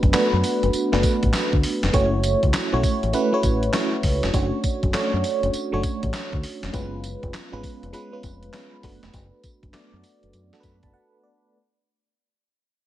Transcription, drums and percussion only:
0.03 kick, closed hi-hat
0.14 snare, clap, closed hi-hat, tambourine
0.44 open hi-hat, tambourine
0.63 closed hi-hat
0.73 closed hi-hat, tambourine
0.93 snare
1.03 kick, closed hi-hat, tambourine
1.23 kick, closed hi-hat
1.33 snare, clap, closed hi-hat, tambourine
1.53 kick
1.63 open hi-hat
1.83 snare, closed hi-hat
1.94 kick, closed hi-hat, tambourine
2.23 closed hi-hat, tambourine
2.43 kick, closed hi-hat
2.54 snare, clap, closed hi-hat, tambourine
2.83 kick, open hi-hat, tambourine
3.03 closed hi-hat
3.13 closed hi-hat, tambourine
3.43 kick, closed hi-hat, tambourine
3.63 closed hi-hat
3.73 snare, clap, closed hi-hat, tambourine
4.03 kick, open hi-hat
4.23 snare, closed hi-hat
4.34 kick, closed hi-hat, tambourine
4.64 kick, closed hi-hat, tambourine
4.83 kick, closed hi-hat
4.94 snare, clap, closed hi-hat, tambourine
5.24 open hi-hat, tambourine
5.43 closed hi-hat
5.53 closed hi-hat, tambourine
5.83 kick, closed hi-hat, tambourine
6.03 kick, closed hi-hat
6.14 snare, clap, closed hi-hat, tambourine
6.33 kick
6.43 open hi-hat
6.63 snare, closed hi-hat
6.74 kick, closed hi-hat, tambourine
7.04 closed hi-hat, tambourine
7.23 kick, closed hi-hat
7.34 snare, clap, closed hi-hat, tambourine
7.63 kick, open hi-hat, tambourine
7.83 closed hi-hat
7.93 closed hi-hat, tambourine
8.23 kick, closed hi-hat, tambourine
8.43 closed hi-hat
8.53 snare, clap, closed hi-hat, tambourine
8.83 kick, open hi-hat
9.03 snare, closed hi-hat
9.14 kick, closed hi-hat, tambourine
9.43 kick, closed hi-hat, tambourine
9.63 kick, closed hi-hat
9.74 snare, clap, closed hi-hat, tambourine
10.04 open hi-hat, tambourine
10.23 closed hi-hat
10.33 closed hi-hat, tambourine
10.53 snare
10.63 kick, closed hi-hat, tambourine
10.83 kick, closed hi-hat

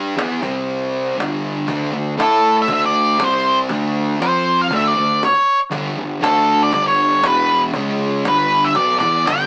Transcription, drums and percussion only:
0.18 cajon slap
0.43 cajon bass
0.96 cajon slap
1.20 cajon slap
1.68 cajon bass
2.20 cajon slap
2.68 cajon bass
3.20 cajon slap
3.69 cajon bass
4.22 cajon slap
4.71 cajon bass
5.23 cajon slap
5.72 cajon bass
6.24 cajon slap
6.73 cajon bass
7.23 cajon slap
7.74 cajon bass
8.25 cajon slap
8.75 cajon bass
9.00 cajon bass
9.27 cajon slap

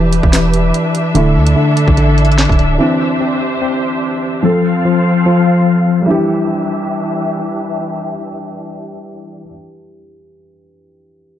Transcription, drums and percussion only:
0.13 closed hi-hat
0.23 kick
0.33 snare, clap, closed hi-hat
0.54 closed hi-hat
0.74 closed hi-hat
0.95 closed hi-hat
1.15 closed hi-hat
1.47 closed hi-hat
1.77 closed hi-hat
1.88 kick
1.97 closed hi-hat
2.18 closed hi-hat
2.25 closed hi-hat
2.32 closed hi-hat
2.38 snare, clap, closed hi-hat
2.45 closed hi-hat
2.49 kick, closed hi-hat
2.59 closed hi-hat

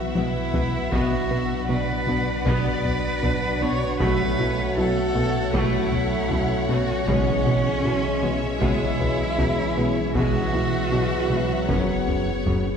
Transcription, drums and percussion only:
0.15 taiko high
0.54 taiko low
0.92 taiko
2.47 taiko
2.85 taiko low
3.24 taiko low
4.01 taiko
5.54 taiko
5.92 taiko low
6.31 taiko low
7.08 taiko
8.61 taiko
9.00 taiko low
9.39 taiko low
10.15 taiko
11.69 taiko
12.08 taiko low
12.46 taiko low

